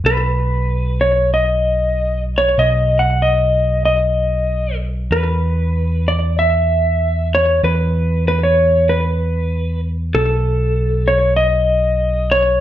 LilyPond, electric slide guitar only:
\new Staff \with { instrumentName = "Electric slide guitar" } { \time 4/4 \key b \dorian \tempo 4 = 95 b'4. cis''8 dis''4~ \tuplet 3/2 { dis''8. r16 cis''8 } | \tuplet 3/2 { dis''4 fis''8 } dis''4 dis''4. r8 | b'4. d''8 e''4. cis''8 | b'4 b'16 cis''8. b'4. r8 |
a'4. cis''8 dis''4. cis''8 | }